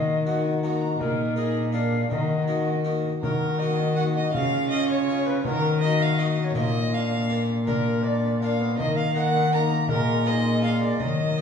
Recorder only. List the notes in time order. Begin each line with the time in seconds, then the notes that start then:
Already playing: D#5
0.27 F#5
0.64 A#5
1.00 A#4
1.37 D#5
1.73 F5
2.11 D#5
3.22 A#4
3.59 D#5
3.96 F#5
4.15 D#5
4.35 F5
4.71 D#5
4.89 C#5
5.26 B4
5.44 B4
5.49 A#4
5.81 D#5
6.00 F5
6.19 D#5
6.44 C#5
6.56 D#5
6.92 F5
7.67 A#4
8.04 D#5
8.08 D5
8.40 F5 F#5
8.78 D#5
8.96 F5
9.15 F#5
9.52 A#5
9.89 A#4
10.26 D#5
10.62 F5
10.80 D5
10.98 D#5